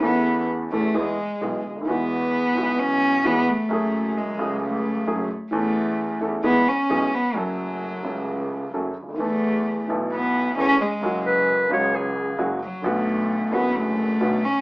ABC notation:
X:1
M:4/4
L:1/16
Q:1/4=131
K:Emix
V:1 name="Clarinet"
z16 | z16 | z16 | z16 |
z16 | z16 | z2 B4 c2 G4- G z3 | z16 |]
V:2 name="Cello"
B,4 z2 A,2 G,6 z2 | B,8 C4 B,2 A,2- | A,4 G,4 A,6 z2 | A,6 z2 B,2 C4 B,2 |
F,12 z4 | A,6 z2 B,4 C2 G,2- | G,4 z8 z2 F,2 | A,6 B,2 A,6 C2 |]
V:3 name="Grand piano" clef=bass
[E,,E,A,CA]6 [E,,E,A,CA]2 [E,,E,G,B,G]2 z2 [B,,,B,,E,G,B,G]2 z/2 C,,/2 D,,/2 ^D,,/2 | [E,,E,G,B,F]6 [B,,,B,,E,G,B,F]6 [E,,E,G,B,F]2 z2 | [F,,F,A,CG]6 [C,,C,F,A,CG]6 [F,,F,A,CG]2 z2 | [E,,E,A,CA]6 [E,,E,A,CA]2 [E,,E,G,B,G]2 z2 [B,,,B,,E,G,B,G]2 z2 |
[F,,F,A,CA]6 [C,,C,F,A,CA]6 [F,,F,A,CA]2 z/2 C,,/2 D,,/2 ^D,,/2 | [E,,E,A,B,A]6 [B,,,B,,E,A,B,A]6 [E,,E,A,B,A]2 z2 | [F,,C,F,G,F]6 [C,,C,F,G,F]6 [F,,C,F,G,F]2 z2 | [B,,,B,,D,F,B,F]6 [F,,,F,,D,F,B,F]6 [B,,,B,,D,F,B,F]2 z2 |]
V:4 name="Double bass" clef=bass
E,,6 E,,2 E,,2 z2 B,,,2 D,,2 | E,,6 B,,,6 E,,2 z2 | F,,,6 C,,6 F,,,2 z2 | E,,6 E,,2 E,,2 z2 B,,,2 z2 |
F,,,6 C,,6 F,,,2 D,,2 | E,,6 B,,,6 E,,2 z2 | F,,,6 C,,6 F,,,2 z2 | B,,,6 F,,,6 B,,,2 z2 |]